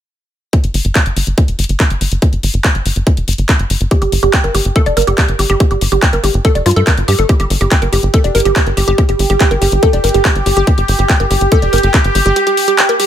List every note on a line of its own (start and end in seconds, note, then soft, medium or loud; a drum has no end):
0.53 kick loud
0.53 closed hi-hat medium
0.64 0.70 G1 medium
0.64 closed hi-hat medium
0.74 0.81 G1 loud
0.74 open hi-hat medium
0.85 0.92 G1 medium
0.85 closed hi-hat medium
0.95 kick loud
0.95 clap loud
0.95 closed hi-hat medium
1.06 1.13 G1 medium
1.06 closed hi-hat medium
1.16 1.23 G1 loud
1.16 open hi-hat loud
1.27 1.34 G1 medium
1.27 closed hi-hat medium
1.38 kick loud
1.38 closed hi-hat medium
1.48 1.55 F1 medium
1.48 closed hi-hat medium
1.59 1.65 G1 loud
1.59 open hi-hat loud
1.64 closed hi-hat medium
1.69 1.76 G1 medium
1.69 closed hi-hat medium
1.80 kick loud
1.80 clap loud
1.80 closed hi-hat medium
1.90 1.97 G1 medium
1.90 closed hi-hat medium
2.01 2.08 G1 loud
2.01 open hi-hat loud
2.12 2.18 G1 medium
2.12 closed hi-hat medium
2.22 kick loud
2.22 closed hi-hat medium
2.33 2.39 G1 medium
2.33 closed hi-hat medium
2.43 2.50 G1 loud
2.43 open hi-hat loud
2.54 2.61 G1 medium
2.54 closed hi-hat soft
2.64 kick loud
2.64 clap loud
2.64 closed hi-hat medium
2.75 2.82 G1 medium
2.75 closed hi-hat soft
2.86 2.92 G1 loud
2.86 open hi-hat loud
2.96 3.03 G1 medium
2.96 closed hi-hat medium
3.07 kick loud
3.07 closed hi-hat medium
3.17 3.24 F1 medium
3.17 closed hi-hat medium
3.28 3.35 G1 loud
3.28 open hi-hat loud
3.33 closed hi-hat medium
3.38 3.45 G1 medium
3.38 closed hi-hat medium
3.49 kick loud
3.49 clap loud
3.49 closed hi-hat medium
3.59 3.66 G1 medium
3.59 closed hi-hat medium
3.70 3.77 G1 loud
3.70 open hi-hat loud
3.81 3.87 G1 medium
3.81 closed hi-hat medium
3.91 3.94 G4 medium
3.91 kick loud
3.91 closed hi-hat medium
4.02 4.08 G1 medium
4.02 4.04 G4 medium
4.02 closed hi-hat medium
4.12 4.19 G1 loud
4.12 open hi-hat loud
4.23 4.30 G1 loud
4.23 4.27 G4 medium
4.23 closed hi-hat soft
4.33 4.38 G5 medium
4.33 kick loud
4.33 clap loud
4.33 closed hi-hat medium
4.44 4.51 G1 medium
4.44 4.46 A#4 medium
4.44 closed hi-hat medium
4.55 4.61 G1 loud
4.55 4.59 G4 medium
4.55 open hi-hat loud
4.65 4.72 G1 medium
4.65 closed hi-hat soft
4.76 4.80 A4 loud
4.76 kick loud
4.76 closed hi-hat medium
4.86 4.93 F1 medium
4.86 4.89 D5 medium
4.86 closed hi-hat medium
4.97 5.04 G1 loud
4.97 5.01 A#4 medium
4.97 open hi-hat loud
5.02 closed hi-hat medium
5.07 5.14 G1 medium
5.07 5.11 G4 medium
5.07 closed hi-hat medium
5.18 5.24 G4 medium
5.18 kick loud
5.18 clap loud
5.18 closed hi-hat medium
5.29 5.35 G1 medium
5.29 closed hi-hat medium
5.39 5.46 G1 loud
5.39 5.43 G4 medium
5.39 open hi-hat loud
5.50 5.56 G1 medium
5.50 5.52 G4 loud
5.50 closed hi-hat medium
5.60 5.63 G4 medium
5.60 kick loud
5.60 closed hi-hat medium
5.71 5.77 G1 medium
5.71 5.73 G4 medium
5.71 closed hi-hat soft
5.81 5.88 G1 loud
5.81 open hi-hat loud
5.92 5.99 G1 loud
5.92 5.96 G4 medium
5.92 closed hi-hat medium
6.02 6.07 G5 medium
6.02 kick loud
6.02 clap loud
6.02 closed hi-hat medium
6.13 6.20 G1 medium
6.13 6.15 A#4 medium
6.13 closed hi-hat medium
6.24 6.30 G1 loud
6.24 6.28 G4 medium
6.24 open hi-hat loud
6.34 6.41 G1 medium
6.34 closed hi-hat soft
6.45 6.49 A4 loud
6.45 kick loud
6.45 closed hi-hat medium
6.55 6.62 F1 medium
6.55 6.58 D5 medium
6.55 closed hi-hat medium
6.66 6.73 G2 loud
6.66 6.70 F4 medium
6.66 open hi-hat loud
6.71 closed hi-hat medium
6.76 6.83 G2 medium
6.76 6.79 A4 loud
6.76 closed hi-hat soft
6.87 6.91 A#4 medium
6.87 kick loud
6.87 clap loud
6.87 closed hi-hat medium
6.98 7.04 G1 medium
6.98 closed hi-hat medium
7.08 7.15 G2 loud
7.08 7.10 G4 loud
7.08 open hi-hat loud
7.19 7.25 G1 medium
7.19 7.21 A4 medium
7.19 closed hi-hat medium
7.29 7.32 G4 medium
7.29 13.06 G4 medium
7.29 kick loud
7.29 closed hi-hat medium
7.40 7.46 G1 medium
7.40 7.42 G4 medium
7.40 closed hi-hat medium
7.50 7.57 G1 loud
7.50 open hi-hat loud
7.61 7.68 G1 loud
7.61 7.65 G4 medium
7.61 closed hi-hat medium
7.71 7.75 G5 medium
7.71 kick loud
7.71 clap loud
7.71 closed hi-hat medium
7.82 7.89 G1 medium
7.82 7.84 A#4 medium
7.82 closed hi-hat medium
7.93 7.99 G1 loud
7.93 7.97 G4 medium
7.93 open hi-hat loud
8.03 8.10 G1 medium
8.03 closed hi-hat soft
8.14 8.18 A4 loud
8.14 kick loud
8.14 closed hi-hat medium
8.24 8.31 F1 medium
8.24 8.27 D5 medium
8.24 closed hi-hat medium
8.35 8.42 G1 medium
8.35 8.39 A#4 medium
8.35 open hi-hat loud
8.40 closed hi-hat medium
8.45 8.52 G1 medium
8.45 8.49 G4 medium
8.45 closed hi-hat soft
8.56 8.62 G4 medium
8.56 kick loud
8.56 clap loud
8.56 closed hi-hat medium
8.66 8.73 G1 medium
8.66 closed hi-hat medium
8.77 8.84 G1 loud
8.77 8.81 G4 medium
8.77 open hi-hat loud
8.88 8.94 G1 loud
8.88 8.90 G4 loud
8.88 closed hi-hat medium
8.98 9.01 G4 medium
8.98 kick loud
8.98 closed hi-hat medium
9.09 9.15 G1 medium
9.09 9.11 G4 medium
9.09 closed hi-hat medium
9.19 9.26 G1 loud
9.19 open hi-hat loud
9.30 9.37 G1 medium
9.30 9.34 G4 medium
9.30 closed hi-hat medium
9.40 9.45 G5 medium
9.40 kick loud
9.40 clap loud
9.40 closed hi-hat medium
9.51 9.58 G1 medium
9.51 9.53 A#4 medium
9.51 closed hi-hat medium
9.62 9.68 G1 loud
9.62 9.66 G4 medium
9.62 open hi-hat loud
9.72 9.79 G1 medium
9.72 closed hi-hat medium
9.83 9.87 A4 loud
9.83 kick loud
9.83 closed hi-hat medium
9.93 10.00 F1 medium
9.93 9.96 D5 medium
9.93 closed hi-hat medium
10.04 10.11 G1 loud
10.04 10.08 A#4 medium
10.04 open hi-hat loud
10.09 closed hi-hat medium
10.14 10.21 G1 medium
10.14 10.18 G4 medium
10.14 closed hi-hat medium
10.25 10.31 G4 medium
10.25 kick loud
10.25 clap loud
10.25 closed hi-hat medium
10.36 10.42 G1 medium
10.36 closed hi-hat medium
10.46 10.53 G1 loud
10.46 10.50 G4 medium
10.46 open hi-hat loud
10.57 10.63 G1 medium
10.57 10.59 G4 loud
10.57 closed hi-hat medium
10.67 10.70 G4 medium
10.67 kick loud
10.67 closed hi-hat medium
10.78 10.85 G1 medium
10.78 10.80 G4 medium
10.78 closed hi-hat medium
10.88 10.95 G1 loud
10.88 open hi-hat medium
10.99 11.06 G1 medium
10.99 11.03 G4 medium
10.99 closed hi-hat medium
11.09 11.14 G5 medium
11.09 kick loud
11.09 clap loud
11.09 closed hi-hat medium
11.20 11.27 G1 medium
11.20 11.22 A#4 medium
11.20 closed hi-hat medium
11.31 11.37 G1 loud
11.31 11.35 G4 medium
11.31 open hi-hat loud
11.41 11.48 G1 medium
11.41 closed hi-hat medium
11.52 11.56 A4 loud
11.52 kick loud
11.52 closed hi-hat medium
11.62 11.69 F1 medium
11.62 11.65 D5 medium
11.62 closed hi-hat medium
11.73 11.80 G1 loud
11.73 11.77 A#4 medium
11.73 open hi-hat loud
11.78 closed hi-hat medium
11.83 11.90 G1 medium
11.83 11.87 G4 medium
11.83 closed hi-hat medium
11.94 12.00 G4 medium
11.94 kick loud
11.94 clap loud
11.94 closed hi-hat medium
12.05 12.11 G1 medium
12.05 closed hi-hat medium
12.15 12.22 G1 loud
12.15 12.19 G4 medium
12.15 open hi-hat loud
12.26 12.32 G1 medium
12.26 12.28 G4 loud
12.26 closed hi-hat medium
12.36 12.39 G4 medium
12.36 closed hi-hat medium
12.47 12.49 G4 medium
12.47 closed hi-hat medium
12.57 open hi-hat medium
12.68 12.72 G4 medium
12.68 closed hi-hat medium
12.78 12.83 G5 medium
12.78 clap loud
12.78 closed hi-hat medium
12.89 12.91 A#4 medium
12.89 closed hi-hat medium
13.00 13.04 G4 medium
13.00 open hi-hat loud